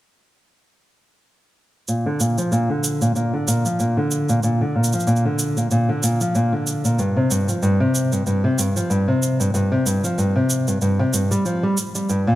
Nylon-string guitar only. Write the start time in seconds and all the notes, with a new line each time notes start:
1.88 A#2
2.06 D3
2.20 A#2
2.38 F3
2.52 A#2
2.70 D3
3.02 A#2
3.16 A#2
3.34 D3
3.48 A#2
3.65 F3
3.80 A#2
3.97 D3
4.29 A#2
4.43 A#2
4.61 D3
4.76 A#2
4.94 F3
5.07 A#2
5.25 D3
5.57 A#2
5.71 A#2
5.89 D3
6.03 A#2
6.21 F3
6.35 A#2
6.53 D3
6.85 A#2
6.99 G2
7.16 C3
7.31 G2
7.48 F3
7.63 G2
7.80 C3
8.12 G2
8.27 G2
8.44 C3
8.58 G2
8.76 F3
8.90 G2
9.08 C3
9.40 G2
9.54 G2
9.72 C3
9.86 G2
10.04 F3
10.18 G2
10.36 C3
10.68 G2
10.82 G2
10.99 C3
11.13 G2
11.31 G3
11.45 F3
11.63 G3
11.95 G3
12.09 G2
12.27 A#2